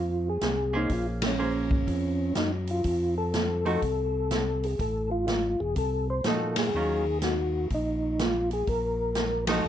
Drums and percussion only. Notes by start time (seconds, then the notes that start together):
0.41 snare, closed hi-hat
0.89 kick, open hi-hat
1.22 snare, ride
1.71 kick
1.87 kick, open hi-hat
2.35 snare, closed hi-hat
2.67 open hi-hat
2.84 kick, open hi-hat
3.34 snare, closed hi-hat
3.66 open hi-hat
3.82 kick, open hi-hat
4.31 snare, closed hi-hat
4.63 open hi-hat
4.79 kick, open hi-hat
5.28 snare, closed hi-hat
5.76 kick, open hi-hat
6.24 snare, closed hi-hat
6.56 snare, ride
7.22 snare, closed hi-hat
7.70 kick, open hi-hat
8.19 snare, closed hi-hat
8.51 open hi-hat
8.67 kick, open hi-hat
9.15 snare, closed hi-hat
9.47 snare, ride